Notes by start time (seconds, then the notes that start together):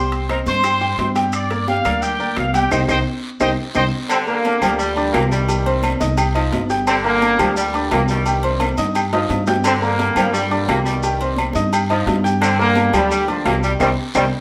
Already playing: C2 G3 G4 C5 G5 C6
0.12 high conga, high timbale, maracas
0.29 C4 A#4 C5 D#5 A#5, high conga, high timbale, short guiro, claves, maracas
0.46 G2 C5 C6, high conga, short guiro, maracas
0.64 G3 G4 G5, high conga, high timbale, long guiro, claves, maracas
0.81 G3 G4 G5, high conga, maracas
0.98 G2, high conga, high timbale, low timbale, short guiro, maracas
1.15 G3 G4 G5, high conga, high timbale, short guiro, maracas
1.33 D5 D6, high conga, high timbale, long guiro, claves, maracas
1.51 A#3 A#4 D5, high timbale, maracas
1.67 G3 G4 F5 G5, high conga, short guiro, maracas
1.85 D2 A#3 A#4 D5, low conga, high timbale, short guiro, claves, maracas
2.02 G4 G5, high conga, low conga, high timbale, long guiro, maracas
2.19 A#3 A#4 D5, high conga, maracas
2.36 C2 F5, high conga, high timbale, low timbale, short guiro, claves, maracas
2.54 G3 G4 G5, high conga, high timbale, short guiro, maracas
2.71 C2 D#4 G4 C5 D#5 G5, high conga, high timbale, long guiro, claves, maracas
2.88 C2 D#4 G4 C5 D#5 G5, high conga, high timbale, long guiro, claves, maracas
3.40 C2 D#4 G4 C5 D#5 G5, high conga, high timbale, long guiro, claves, maracas
3.74 C2 D#4 G4 C5 D#5 G5, high conga, high timbale, long guiro, claves, maracas
4.09 D3 G3 C4, high conga, low agogo, long guiro, claves, maracas
4.27 D3 G3 A#3 A#4 A#5, high conga, maracas
4.44 high conga, low timbale, low agogo, short guiro, maracas
4.61 D2 F3 G3 G4 G5, high conga, low conga, low agogo, short guiro, claves, maracas
4.79 A#2 D3 G3, high conga, long guiro, maracas
4.97 D4 D5 D6, high conga, low agogo, maracas
5.13 C2 F3 G3 A#3 G4 G5, high conga, low timbale, low agogo, short guiro, claves, maracas
5.31 G2 C3 D#3 G3, high conga, short guiro, maracas
5.49 G3 G4 G5, high conga, low agogo, long guiro, maracas
5.66 C4 C5 C6, high conga, low agogo, maracas
5.83 high conga, low timbale, low agogo, short guiro, claves, maracas
6.00 C2 D#4 D#5 D#6, high conga, short guiro, maracas
6.17 G4 G5 G6, high conga, low agogo, long guiro, claves, maracas
6.34 F3 D#4 D#5 D#6, high conga, low agogo, maracas
6.52 G1, high conga, low timbale, low agogo, short guiro, maracas
6.70 G4 G5 G6, short guiro, maracas
6.87 D3 G3 C4, high conga, low agogo, long guiro, claves, maracas
7.04 D3 G3 A#3 A#4 A#5, high conga, maracas
7.22 high conga, low timbale, low agogo, short guiro, maracas
7.39 D2 F3 G3 G4 G5, high conga, low conga, low agogo, short guiro, claves, maracas
7.56 A#2 D3 G3, high conga, long guiro, maracas
7.74 D4 D5 D6, high conga, low agogo, maracas
7.91 C2 F3 G3 A#3 G4 G5, high conga, low timbale, low agogo, short guiro, claves, maracas
8.08 G2 C3 D#3 G3, high conga, short guiro, maracas
8.25 G3 G4 G5, high conga, low agogo, long guiro, maracas
8.43 C4 C5 C6, high conga, low agogo, maracas
8.60 high conga, high timbale, low agogo, short guiro, claves, maracas
8.78 G2 D#4 D#5 D#6, high conga, short guiro, maracas
8.95 G4 G5 G6, high conga, low agogo, long guiro, claves, maracas
9.13 F3 D#4 D#5 D#6, high conga, low timbale, low agogo, maracas
9.30 G2, high conga, low timbale, low agogo, short guiro, maracas
9.47 G4 G5 G6, high conga, low timbale, short guiro, maracas
9.64 D3 G3 C4, high conga, low agogo, long guiro, claves, maracas
9.82 D3 G3 A#3 A#4 A#5, high conga, maracas
9.99 high conga, low timbale, low agogo, short guiro, maracas
10.16 G2 F3 G3 G4 G5, high conga, low conga, low agogo, short guiro, claves, maracas
10.33 A#2 D3 G3, high conga, low conga, long guiro, maracas
10.51 D4 D5 D6, high conga, low agogo, maracas
10.68 C2 F3 G3 A#3 G4 G5, high conga, low timbale, low agogo, short guiro, claves, maracas
10.85 G2 C3 D#3 G3, high conga, short guiro, maracas
11.03 G3 G4 G5, high conga, low agogo, long guiro, maracas
11.20 C4 C5 C6, high conga, low agogo, maracas
11.36 high conga, low timbale, low agogo, short guiro, claves, maracas
11.53 G2 D#4 D#5 D#6, high conga, short guiro, maracas
11.73 G4 G5 G6, low agogo, long guiro, claves, maracas
11.89 F3 D#4 D#5 D#6, high conga, low agogo, maracas
12.06 G2, high conga, low timbale, low agogo, short guiro, maracas
12.24 G4 G5 G6, short guiro, maracas
12.41 D3 G3 C4, high conga, low agogo, long guiro, claves, maracas
12.59 D3 G3 A#3 A#4 A#5, high conga, maracas
12.75 high conga, low timbale, low agogo, short guiro, maracas
12.93 D2 A#2 D3 F3 G3 G4 G5, high conga, low conga, low agogo, short guiro, claves, maracas
13.11 G3, high conga, low conga, long guiro, maracas
13.28 F3 D4 D5 D6, high conga, low agogo, maracas
13.45 C2 F3 G3 A#3 G4 G5, high conga, low timbale, low agogo, short guiro, claves, maracas
13.62 C3 D#3 G3, high conga, short guiro, maracas
13.80 C2 C3 D#3 G3 C5 D#5 G5, high conga, high timbale, long guiro, claves, maracas
14.14 C2 C3 D#3 G3 C5 D#5 G5, high conga, high timbale, long guiro, claves, maracas